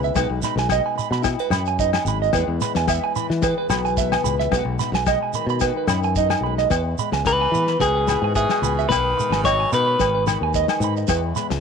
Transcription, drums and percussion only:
0.03 shekere soft
0.16 kick medium
0.16 snare medium
0.16 low agogo medium
0.16 shekere medium
0.42 snare soft
0.42 shekere loud
0.58 snare medium
0.58 shekere soft
0.69 kick medium
0.69 snare medium
0.69 low agogo medium
0.69 shekere medium
0.99 shekere medium
1.12 snare soft
1.24 kick medium
1.24 snare medium
1.24 low agogo medium
1.24 shekere medium
1.51 snare medium
1.51 low agogo medium
1.51 shekere medium
1.66 shekere soft
1.79 kick medium
1.79 shekere medium
1.93 snare medium
1.93 low agogo medium
2.06 shekere medium
2.23 shekere soft
2.33 kick medium
2.33 snare medium
2.33 low agogo medium
2.33 shekere medium
2.61 snare soft
2.61 shekere medium
2.75 snare medium
2.75 shekere soft
2.88 kick medium
2.88 snare medium
2.88 low agogo medium
2.88 shekere medium
3.16 shekere medium
3.31 snare soft
3.42 kick loud
3.42 snare medium
3.42 low agogo medium
3.42 shekere medium
3.70 snare medium
3.70 low agogo medium
3.70 shekere medium
3.85 shekere soft
3.97 kick medium
3.97 snare soft
3.97 shekere medium
4.12 snare medium
4.12 low agogo medium
4.25 shekere loud
4.40 snare soft
4.40 shekere soft
4.52 kick medium
4.52 snare medium
4.52 low agogo medium
4.52 shekere medium
4.80 snare soft
4.80 shekere loud
4.94 snare medium
4.94 shekere soft
5.07 kick medium
5.07 snare medium
5.07 low agogo medium
5.07 shekere medium
5.33 shekere medium
5.49 shekere soft
5.60 kick medium
5.60 snare medium
5.60 low agogo medium
5.60 shekere medium
5.88 snare medium
5.88 low agogo medium
5.88 shekere medium
6.03 shekere soft
6.16 kick medium
6.16 shekere medium
6.30 snare medium
6.30 low agogo medium
6.58 snare soft
6.58 shekere soft
6.70 kick medium
6.70 snare medium
6.70 low agogo medium
6.70 shekere medium
6.98 shekere medium
7.13 snare medium
7.25 kick medium
7.25 snare medium
7.25 low agogo medium
7.25 shekere medium
7.55 shekere medium
7.67 snare soft
7.80 kick medium
7.80 snare medium
7.80 low agogo medium
7.80 shekere medium
8.08 snare medium
8.08 low agogo medium
8.08 shekere medium
8.35 kick medium
8.35 snare soft
8.35 shekere medium
8.49 snare medium
8.49 low agogo medium
8.64 shekere medium
8.79 shekere soft
8.90 kick medium
8.90 snare medium
8.90 low agogo medium
8.90 shekere medium
9.20 shekere medium
9.32 snare medium
9.44 kick medium
9.44 snare medium
9.44 low agogo medium
9.44 shekere medium
9.72 shekere medium
9.99 kick medium
9.99 snare medium
9.99 low agogo medium
9.99 shekere medium
10.27 snare medium
10.27 low agogo medium
10.27 shekere medium
10.54 kick medium
10.54 snare soft
10.54 shekere medium
10.68 snare medium
10.68 low agogo medium
10.81 shekere medium
10.96 shekere soft
11.08 kick medium
11.08 snare medium
11.08 low agogo medium
11.08 shekere medium
11.36 snare soft
11.36 shekere medium
11.50 snare medium

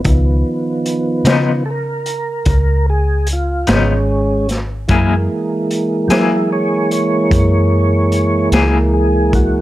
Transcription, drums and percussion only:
0.05 kick medium
0.05 closed hi-hat medium
0.86 closed hi-hat soft
1.25 snare loud
1.25 closed hi-hat medium
2.06 closed hi-hat medium
2.45 kick medium
2.45 closed hi-hat medium
3.27 closed hi-hat medium
3.67 snare medium
3.67 closed hi-hat medium
4.49 snare soft
4.49 closed hi-hat medium
4.89 kick medium
4.89 closed hi-hat medium
5.71 closed hi-hat soft
6.10 snare loud
6.10 closed hi-hat medium
6.91 closed hi-hat medium
7.31 kick medium
7.31 closed hi-hat medium
8.12 closed hi-hat medium
8.52 snare medium
8.52 closed hi-hat medium
9.33 kick medium
9.33 closed hi-hat medium

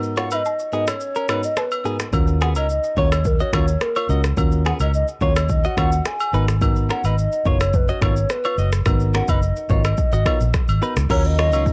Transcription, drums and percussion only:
0.03 shaker medium
0.17 finger snap medium
0.17 cross-stick medium
0.17 shaker medium
0.31 high agogo medium
0.31 shaker loud
0.45 low woodblock medium
0.45 shaker medium
0.59 shaker medium
0.72 shaker soft
0.87 finger snap medium
0.87 cross-stick medium
0.87 high agogo medium
0.87 shaker medium
1.00 shaker medium
1.15 shaker medium
1.29 finger snap medium
1.29 cross-stick loud
1.29 high agogo medium
1.29 shaker medium
1.43 shaker medium
1.57 finger snap medium
1.57 cross-stick loud
1.57 low woodblock medium
1.57 shaker medium
1.72 high agogo medium
1.72 shaker medium
1.85 shaker soft
2.00 finger snap medium
2.00 cross-stick medium
2.00 shaker medium
2.13 kick loud
2.13 high agogo medium
2.13 shaker medium
2.27 shaker medium
2.41 finger snap medium
2.41 cross-stick medium
2.41 shaker medium
2.55 high agogo medium
2.55 shaker medium
2.70 shaker medium
2.84 shaker medium
2.97 kick medium
2.97 shaker soft
3.12 finger snap medium
3.12 cross-stick loud
3.12 high agogo medium
3.12 shaker medium
3.25 kick medium
3.25 shaker medium
3.40 shaker medium
3.53 finger snap medium
3.53 kick medium
3.53 cross-stick medium
3.53 high agogo medium
3.53 shaker medium
3.68 shaker medium
3.81 finger snap medium
3.81 cross-stick loud
3.81 shaker medium
3.96 high agogo medium
3.96 shaker soft
4.09 shaker soft
4.24 finger snap medium
4.24 cross-stick medium
4.24 shaker medium
4.37 kick loud
4.37 high agogo medium
4.37 shaker medium
4.52 shaker medium
4.65 finger snap medium
4.65 cross-stick medium
4.65 shaker medium
4.80 high agogo medium
4.80 shaker medium
4.94 shaker medium
5.08 shaker medium
5.21 kick medium
5.21 shaker soft
5.36 finger snap medium
5.36 cross-stick loud
5.36 high agogo medium
5.36 shaker medium
5.49 kick medium
5.49 shaker medium
5.64 shaker medium
5.77 finger snap medium
5.77 kick medium
5.77 cross-stick medium
5.77 high agogo medium
5.77 shaker medium
5.92 shaker medium
6.05 finger snap medium
6.05 cross-stick medium
6.05 shaker medium
6.20 high agogo medium
6.20 shaker soft
6.34 shaker soft
6.48 finger snap medium
6.48 cross-stick medium
6.48 shaker medium
6.62 kick loud
6.62 high agogo medium
6.62 shaker medium
6.76 shaker medium
6.90 finger snap medium
6.90 cross-stick medium
6.90 shaker medium
7.04 high agogo medium
7.04 shaker medium
7.18 shaker medium
7.32 shaker medium
7.45 kick medium
7.45 shaker soft
7.60 finger snap medium
7.60 cross-stick medium
7.60 high agogo medium
7.60 shaker medium
7.73 kick medium
7.73 shaker medium
7.88 shaker medium
8.02 finger snap medium
8.02 kick medium
8.02 cross-stick medium
8.02 high agogo medium
8.02 shaker medium
8.16 shaker medium
8.30 finger snap medium
8.30 cross-stick medium
8.30 shaker medium
8.44 high agogo medium
8.44 shaker soft
8.58 shaker medium
8.73 finger snap medium
8.73 cross-stick medium
8.73 shaker medium
8.86 finger snap medium
8.86 kick loud
8.86 cross-stick loud
8.86 high agogo medium
8.86 shaker medium
9.00 shaker medium
9.14 finger snap medium
9.14 cross-stick medium
9.14 shaker medium
9.28 kick medium
9.28 high agogo medium
9.28 shaker medium
9.42 shaker medium
9.56 shaker medium
9.69 kick medium
9.69 shaker soft
9.84 finger snap medium
9.84 cross-stick medium
9.84 high agogo medium
9.84 shaker medium
9.98 kick medium
9.98 shaker medium
10.12 shaker medium
10.26 finger snap medium
10.26 kick medium
10.26 cross-stick loud
10.26 high agogo medium
10.26 shaker medium
10.41 shaker medium
10.54 finger snap medium
10.54 kick medium
10.54 cross-stick medium
10.54 shaker medium
10.69 high agogo medium
10.69 shaker soft
10.82 shaker soft
10.97 finger snap medium
10.97 cross-stick medium
10.97 shaker medium
11.10 kick loud
11.10 crash medium
11.10 high agogo medium
11.10 shaker medium
11.24 shaker medium
11.38 finger snap medium
11.38 cross-stick medium
11.38 shaker medium
11.53 high agogo medium
11.53 shaker medium
11.66 kick medium
11.66 shaker medium

